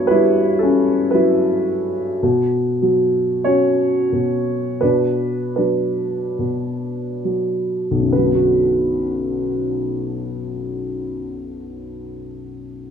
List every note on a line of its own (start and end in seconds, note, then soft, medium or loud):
0.00 2.19 G2 soft
0.00 0.57 E3 soft
0.00 1.09 F#3 soft
0.00 1.63 B3 soft
0.00 0.11 E4 medium
0.00 0.13 C#5 medium
0.07 2.19 G3 soft
0.07 0.58 E4 medium
0.07 0.61 B4 medium
0.59 1.11 C#4 soft
0.59 1.14 A4 medium
1.11 2.20 F#3 soft
1.11 1.91 E4 soft
1.11 1.90 B4 medium
2.23 4.11 B2 soft
2.82 4.78 F#3 soft
3.44 4.78 C#4 soft
3.44 4.79 F#4 soft
3.44 4.86 C#5 medium
4.13 4.80 B2 soft
4.81 6.37 B2 soft
4.81 5.53 D4 soft
4.81 5.52 B4 medium
5.56 7.23 F#3 soft
5.56 7.20 D4 soft
5.56 7.19 B4 soft
6.39 8.09 B2 soft
7.24 8.10 F#3 soft
7.91 11.01 B1 soft
7.99 11.10 F#2 soft
8.08 11.18 D3 soft
8.13 11.23 B4 soft
8.17 11.27 F#3 soft
8.26 11.36 B3 soft
8.35 11.45 F#4 soft